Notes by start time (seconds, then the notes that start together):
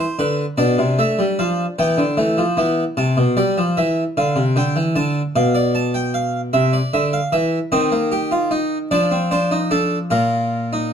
Already playing: C4
0.00 C5
0.19 D3 B4
0.57 B2 D4 D5
0.78 C3
0.99 A3 E5
1.19 G3
1.39 F3 F5
1.79 E3 B3 G5
1.98 D3
2.17 E3 A3
2.38 F3
2.57 E3 B3
2.97 C3 A5
3.17 B2
3.37 G3 D5
3.58 F3
3.77 E3 E5
4.17 D3 F5
4.36 C3
4.56 D3 G5
4.76 E3
4.96 D3 A5
5.36 B2 F5
5.55 D5
5.75 A5
5.94 G5
6.14 F5
6.53 C3 E5
6.73 D5
6.93 D3 E5
7.13 F5
7.32 E3 E5
7.72 D#3 C4 D#5
7.92 A#3
8.12 G4
8.31 F4
8.51 D#4
8.91 F3 D4 D5
9.11 C4
9.31 D4 C5
9.51 D#4
9.71 D4 A4
10.10 A#2 F4 A#4
10.73 D#4